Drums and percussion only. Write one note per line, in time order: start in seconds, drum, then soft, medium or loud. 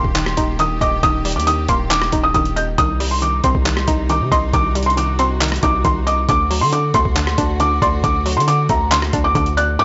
0.04 kick loud
0.15 clap loud
0.15 closed hi-hat medium
0.26 cross-stick loud
0.37 kick loud
0.37 closed hi-hat loud
0.59 closed hi-hat medium
0.81 kick medium
0.81 closed hi-hat medium
1.03 kick loud
1.03 closed hi-hat medium
1.25 closed hi-hat soft
1.25 open hi-hat medium
1.32 closed hi-hat medium
1.40 closed hi-hat medium
1.47 closed hi-hat medium
1.68 kick loud
1.68 closed hi-hat medium
1.91 clap loud
1.91 closed hi-hat medium
2.02 cross-stick loud
2.12 kick medium
2.12 closed hi-hat medium
2.34 kick loud
2.34 closed hi-hat medium
2.45 closed hi-hat soft
2.57 closed hi-hat medium
2.78 kick loud
2.78 closed hi-hat medium
3.00 open hi-hat medium
3.22 closed hi-hat medium
3.44 kick loud
3.44 closed hi-hat medium
3.55 kick loud
3.66 clap loud
3.66 closed hi-hat medium
3.77 cross-stick loud
3.88 kick loud
3.88 closed hi-hat loud
4.09 closed hi-hat medium
4.32 kick loud
4.32 closed hi-hat medium
4.53 kick loud
4.53 closed hi-hat medium
4.75 closed hi-hat medium
4.83 closed hi-hat medium
4.90 closed hi-hat soft
4.97 closed hi-hat medium
5.19 closed hi-hat medium
5.41 clap loud
5.41 closed hi-hat medium
5.48 cross-stick loud
5.48 closed hi-hat medium
5.56 closed hi-hat medium
5.63 kick loud
5.63 closed hi-hat medium
5.85 kick medium
5.85 closed hi-hat medium
6.07 closed hi-hat medium
6.29 kick loud
6.29 closed hi-hat medium
6.51 open hi-hat medium
6.73 closed hi-hat medium
6.94 kick loud
6.94 closed hi-hat medium
7.05 kick loud
7.16 clap loud
7.16 closed hi-hat medium
7.27 cross-stick loud
7.38 kick loud
7.38 closed hi-hat loud
7.60 closed hi-hat medium
7.82 kick loud
7.82 closed hi-hat medium
8.04 kick loud
8.04 closed hi-hat medium
8.26 closed hi-hat soft
8.26 open hi-hat medium
8.33 closed hi-hat medium
8.40 closed hi-hat medium
8.48 closed hi-hat medium
8.69 kick loud
8.69 closed hi-hat medium
8.91 clap loud
8.91 closed hi-hat medium
9.02 cross-stick loud
9.13 kick loud
9.13 closed hi-hat medium
9.35 kick medium
9.35 closed hi-hat medium
9.46 closed hi-hat soft
9.58 closed hi-hat medium